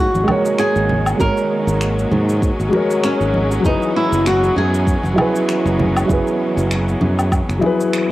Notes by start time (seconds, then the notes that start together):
Already playing: D#3 F#3 G#3 A#3 C#4 A#4 C#5
0.00 F#4
0.14 G#1, high conga, shaker
0.24 G#3 F#4
0.28 A#4 C#5, high conga, low conga, low woodblock
0.45 shaker
0.59 G#4, finger snap, shaker
0.76 G#1, high bongo, shaker
0.89 high conga, low conga
1.06 low woodblock, shaker
1.16 G#1 G#3 F#4, kick
1.20 A#4 C#5, shaker
1.37 shaker
1.67 G#1, shaker
1.81 finger snap, shaker
1.99 shaker
2.11 G#2, high bongo, high conga, low conga
2.29 shaker
2.42 kick, shaker
2.60 G#1, shaker
2.69 G#3 F#4
2.73 A#4 C#5, high bongo, high conga
2.90 shaker
3.04 C#4, finger snap, shaker
3.21 G#1, high bongo, shaker
3.34 high conga
3.51 high bongo, shaker
3.60 E3 F#3
3.64 F#1 E3 B3 D#4 G#4 B4, kick, shaker
3.82 shaker
3.96 E4
4.12 F#1, shaker
4.26 F#4, finger snap, shaker
4.44 shaker
4.56 F#2 G#4, high bongo
4.74 shaker
4.87 kick, shaker
5.03 F#1, high conga, shaker
5.14 F#3 E4
5.18 G#4 B4, high conga, low conga, low woodblock
5.36 shaker
5.49 finger snap, shaker
5.66 F#1, high bongo, shaker
5.79 high conga, low conga
5.97 low woodblock, shaker
6.05 F#1 F#3 E4, kick
6.10 G#4 B4, shaker
6.27 shaker
6.57 F#1, shaker
6.71 finger snap, shaker
6.88 shaker
7.01 F#2, high bongo, high conga, low conga
7.19 low woodblock, shaker
7.32 kick, low woodblock, shaker
7.49 F#1, finger snap, shaker
7.59 F#3 E4, high bongo, high conga
7.64 G#4 B4
7.80 shaker
7.93 finger snap, shaker